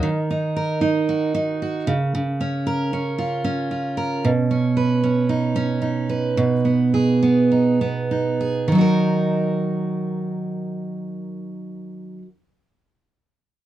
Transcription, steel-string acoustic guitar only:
\new Staff \with { instrumentName = "Steel-string acoustic guitar" } { \time 4/4 \key ees \minor \tempo 4 = 108 ees8 ees'8 bes'8 ees'8 ges'8 ees'8 ges'8 des8 | des8 des'8 bes'8 des'8 f'8 des'8 f'8 bes'8 | b,8 cis'8 b'8 cis'8 dis'8 cis'8 dis'8 b'8 | ces8 ces'8 aes'8 ces'8 ees'8 ces'8 ees'8 aes'8 |
<ees ges ees' ges' bes'>1~ | <ees ges ees' ges' bes'>1 | }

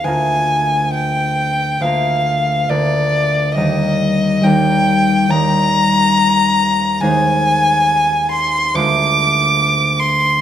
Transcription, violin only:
\new Staff \with { instrumentName = "Violin" } { \time 4/4 \key ees \major \tempo 4 = 69 aes''4 g''4 f''4 d''4 | ees''4 g''4 bes''2 | aes''4. c'''8 d'''4. c'''8 | }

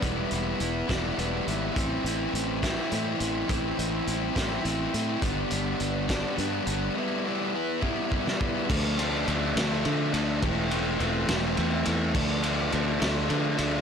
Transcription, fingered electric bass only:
\new Staff \with { instrumentName = "Fingered electric bass" } { \clef bass \time 6/8 \key a \minor \tempo 4. = 69 e,,8 e,,8 e,,8 e,,8 e,,8 gis,,8 | a,,8 a,,8 a,,4 a,8 a,,8 | a,,8 a,,8 a,,8 a,,8 a,,8 a,8 | g,,8 g,,8 g,,4 g,8 g,,8 |
r2. | d,4 d,8 d,8 d8 d,8 | e,,4 e,,8 e,,8 e,8 e,8 | d,4 d,8 d,8 d8 d,8 | }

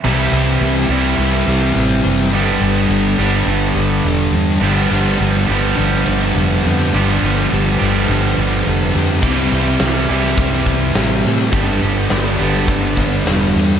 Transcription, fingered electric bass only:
\new Staff \with { instrumentName = "Fingered electric bass" } { \clef bass \time 4/4 \key g \major \tempo 4 = 104 c,8 c,8 c,8 c,8 c,8 c,8 a,,8 fis,,8 | g,,8 g,,8 g,,8 g,,8 g,,8 g,,8 e,,8 e,8 | g,,8 g,,8 g,,8 g,,8 g,,8 g,,8 f,,8 f,8 | g,,8 g,,8 g,,8 g,,8 g,,8 g,,8 f,,8 f,8 |
c,8 c,8 c,8 c,8 c,8 c,8 a,,8 a,8 | g,,8 g,,8 g,,8 g,,8 g,,8 g,,8 e,,8 e,8 | }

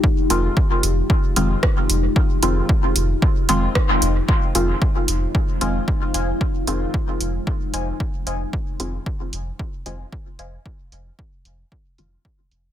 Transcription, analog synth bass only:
\new Staff \with { instrumentName = "Analog synth bass" } { \clef bass \time 4/4 \key f \minor \tempo 4 = 113 r8 f,,8 r8 f,,8 r8 f,,8 r8 f,,8 | r8 f,,8 r8 f,,8 r8 f,,8 r8 f,,8 | r8 f,,8 r8 f,,8 r8 f,,8 r8 f,,8 | r8 f,,8 r8 f,,8 r8 f,,8 r8 f,,8 |
r8 f,,8 r8 f,,8 r8 f,,8 r8 f,,8 | r8 f,,8 r8 f,,8 r8 f,,8 r8 f,,8 | }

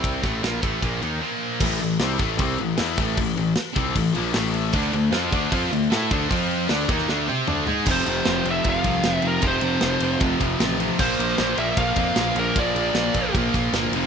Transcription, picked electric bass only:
\new Staff \with { instrumentName = "Picked electric bass" } { \clef bass \time 4/4 \key a \phrygian \tempo 4 = 154 c,8 a,,8 bes,,8 a,,8 bes,,8 dis,8 r4 | a,,8 a,,8 c,8 a,,8 c,8 a,,8 e,8 a,,8 | a,,8 a,,8 r8 c,8 a,,8 bes,,8 a,,4 | d,8 d,8 f,8 d,8 f,8 d,8 a,8 d,8 |
f,4 d,8 dis,8 d,8 c8 d,8 gis,8 | f,,8 f,,8 f,,8 f,,8 f,,8 c,8 f,,8 f,,8 | f,,8 f,,8 f,,8 f,,8 f,,8 f,,8 a,,4 | bes,,8 bes,,8 bes,,8 bes,,8 bes,,8 f,8 bes,,8 bes,,8 |
bes,,8 bes,,8 bes,,8 bes,,8 bes,,8 bes,,8 g,,8 f,,8 | }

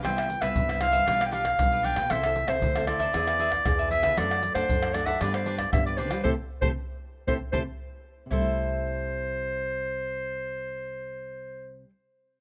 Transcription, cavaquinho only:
\new Staff \with { instrumentName = "Cavaquinho" } { \time 4/4 \key c \major \tempo 4 = 116 <g' b' c'' e''>16 <b' c'' e''>16 r16 <b' c'' e''>8 <b' c'' e''>16 <g' b' c'' e''>16 <b' c'' e''>16 <d' g' b' f''>16 <g' b' f''>16 <d' g' b' f''>16 r8 <g' b' f''>16 <d' g' b' f''>16 <g' b'>16 | <e' a' c'' e''>16 <a' c'' e''>16 r16 <a' c'' e''>8 <a' c'' e''>16 <e' a' c'' e''>16 <a' c'' e''>16 <e' gis' b' e''>16 <gis' b' e''>16 <e' gis' b' e''>16 r8 <gis' b' e''>16 <e' gis' b' e''>16 <gis' b' e''>16 | <d' a' d'' fis''>16 <a' d'' fis''>16 r16 <a' d'' fis''>8 <a' d'' fis''>16 <d' a' d'' fis''>16 <a' d'' fis''>16 <d' g' b' d''>16 <g' b' d''>16 <d' g' b' d''>16 r8 <g' b' d''>16 <d' g' b' d''>16 <g' b' d''>16 | <g' a' c''>16 r8 <g' a' c''>16 r4 <g' a' c''>16 r16 <g' a' c''>16 r4 r16 |
<e' a' c'' e''>1~ | <e' a' c'' e''>1 | }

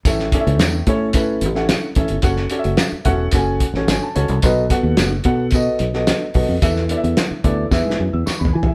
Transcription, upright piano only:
<<
  \new Staff \with { instrumentName = "Upright piano" } { \time 4/4 \key a \major \tempo 4 = 110 << { r1 | r4. e''8 fis''4 gis''16 a''16 a''8 | r1 | r2 r8. e'''16 cis'''16 b''16 gis''16 e''16 | } \\ { <cis' e' a' e''>16 r16 <cis' e' a' d'' e''>8. r16 <cis' e' a' cis''>16 r16 <cis' e' a' b'>8 r16 <cis' e' a' fis''>8 r16 <cis' e' a' e''>16 r16 | <cis' fis' a' fis''>16 r16 <cis' fis' a' d'' e''>8. r16 <cis' fis' a' fis''>16 r16 <cis' fis' a' gis''>8 r16 <cis' fis' a' cis''>8 r16 <cis' fis' a' cis''>16 r16 | <b fis' a' dis''>16 r16 <b fis' a' fis''>8. r16 <b fis' a' fis''>16 r16 <b fis' a' dis''>8 r16 <b fis' a' dis''>8 r16 <b fis' a' dis''>16 r16 | <b e' a' e''>16 r16 <b e' a' d'' e''>8. r16 <b e' a' d''>16 r16 <b e' gis' e''>8 r4. | } >> }
  \new Staff \with { instrumentName = "Upright piano" } { \clef bass \time 4/4 \key a \major a,4. r2 r8 | r1 | b,4. r2 r8 | e4. r8 e4. r8 | }
>>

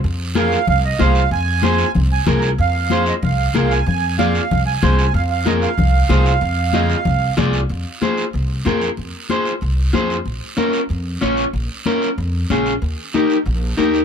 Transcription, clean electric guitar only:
\new Staff \with { instrumentName = "Clean electric guitar" } { \time 4/4 \key f \dorian \tempo 4 = 188 r4 <f' aes' bes'>8 r4. <f' aes' c''>8 r8 | r4 <f' aes' c''>8 r4. <f' aes' bes'>8 r8 | r4 <f' aes' c''>8 r4. <f' aes' bes'>8 r8 | r4 <f' aes' d''>8 r4. <f' aes' c''>8 r8 |
r4 <f' aes' bes'>8 r4. <f' aes' c''>8 r8 | r4 <f' aes' ees''>8 r4. <f' aes' d''>8 r8 | \key f \minor r4 <f' aes' c''>8 r4. <f' aes' bes'>8 r8 | r4 <f' aes' c''>8 r4. <f' aes' c''>8 r8 |
r4 <des' f' bes'>8 r4. <des' f' des''>8 r8 | r4 <des' f' bes'>8 r4. <des' f' aes'>8 r8 | r4 <ees' g' bes'>8 r4. <ees' g' bes'>8 r8 | }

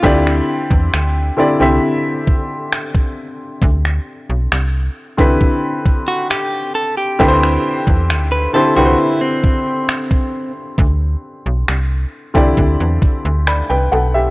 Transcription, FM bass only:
\new Staff \with { instrumentName = "FM bass" } { \clef bass \time 4/4 \key d \phrygian \tempo 4 = 67 d,8 r16 e,16 d,8 r16 c,16 r2 | d,8 r16 b,,16 c,8 r16 c,16 r2 | d,8 r16 e,16 d,8 r16 c,16 r2 | d,8 r16 b,,16 c,8 r16 c,16 d,16 e,16 r16 d,8 c,16 b,,8 | }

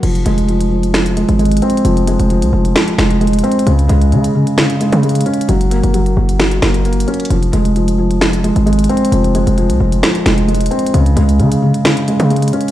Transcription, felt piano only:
\new Staff \with { instrumentName = "Felt piano" } { \clef bass \time 4/4 \key f \minor \tempo 4 = 132 f8 aes8 f8 f8 f8 aes8 aes8 c'8 | f8 aes8 f8 f8 f8 aes8 aes8 c'8 | des8 aes8 des8 des8 des8 aes8 aes8 des'8 | ges8 bes8 ges8 ges8 ges8 bes8 bes8 des'8 |
f8 aes8 f8 f8 f8 aes8 aes8 c'8 | f8 aes8 f8 f8 f8 aes8 aes8 c'8 | des8 aes8 des8 des8 des8 aes8 aes8 des'8 | }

